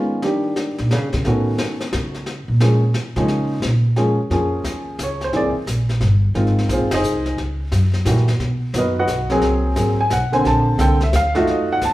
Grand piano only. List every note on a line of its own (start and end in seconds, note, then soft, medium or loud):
0.00 0.22 D#3 medium
0.00 0.23 G#3 soft
0.00 0.23 B3 soft
0.00 0.23 C#4 soft
0.00 0.23 F4 medium
0.23 1.18 D#3 soft
0.23 1.18 G3 soft
0.23 1.18 A#3 soft
0.23 1.18 D4 soft
0.23 1.19 G4 medium
1.26 2.20 D#3 medium
1.26 2.21 A3 medium
1.26 2.21 B3 medium
1.26 2.21 C#4 medium
1.26 2.21 F#4 medium
2.60 2.81 F3 medium
2.60 2.81 G#3 soft
2.60 2.81 A#3 soft
2.60 2.81 C#4 medium
2.60 2.81 G#4 medium
3.16 3.60 F3 medium
3.16 3.61 G#3 medium
3.16 3.61 A#3 medium
3.16 3.61 C#4 medium
3.16 3.61 D#4 medium
3.97 4.17 F3 medium
3.97 4.17 G#3 medium
3.97 4.17 A#3 medium
3.97 4.17 C#4 medium
3.97 4.17 G#4 medium
4.31 5.26 F3 medium
4.31 5.26 A#3 medium
4.31 5.26 C#4 medium
4.31 5.27 G#4 medium
5.03 5.23 C#5 medium
5.24 5.35 C5 medium
5.33 5.53 E3 medium
5.33 5.53 A#3 medium
5.33 5.54 C4 medium
5.33 5.54 G#4 medium
5.33 5.49 D5 medium
6.35 7.30 D#3 medium
6.35 7.30 G#3 soft
6.35 6.71 C4 medium
6.35 6.71 F4 medium
6.73 6.93 C4 medium
6.73 6.93 F4 medium
6.73 6.93 G#4 medium
6.73 6.93 C5 medium
6.94 7.36 D#4 medium
6.94 7.36 G#4 medium
6.94 7.36 C5 medium
6.94 7.36 D#5 medium
8.06 8.26 E3 medium
8.06 8.26 G3 medium
8.06 8.27 A#3 soft
8.06 8.27 F#4 medium
8.74 8.94 D#3 medium
8.74 8.94 A#3 soft
8.74 8.94 B3 soft
8.74 8.95 F#4 medium
8.74 8.98 D#5 medium
8.78 8.98 D#4 medium
8.78 8.98 A#4 medium
8.78 8.98 B4 medium
8.99 9.41 F#4 medium
8.99 9.41 B4 medium
8.99 9.41 D#5 medium
8.99 9.41 F#5 medium
9.30 9.74 F#3 medium
9.30 9.74 A#3 medium
9.30 9.75 C4 medium
9.30 9.75 G#4 medium
9.76 9.96 F#3 medium
9.76 9.96 A#3 medium
9.76 9.97 C4 medium
9.76 9.97 G#4 medium
10.01 10.11 G#5 medium
10.13 10.33 F#5 medium
10.32 10.76 D3 medium
10.32 10.77 A#3 medium
10.32 10.77 C4 medium
10.32 10.77 C5 medium
10.32 10.45 G#5 medium
10.47 10.78 A5 medium
10.78 10.99 D3 medium
10.78 10.99 A#3 medium
10.78 10.99 C4 medium
10.78 10.99 A4 medium
10.78 11.01 G5 medium
11.03 11.14 E5 medium
11.16 11.36 F5 loud
11.35 11.79 A3 medium
11.35 11.79 D#4 medium
11.35 11.79 F4 medium
11.35 11.80 F#4 medium
11.35 11.48 E5 medium
11.51 11.70 D#5 medium
11.73 11.83 F#5 medium
11.85 11.93 A5 medium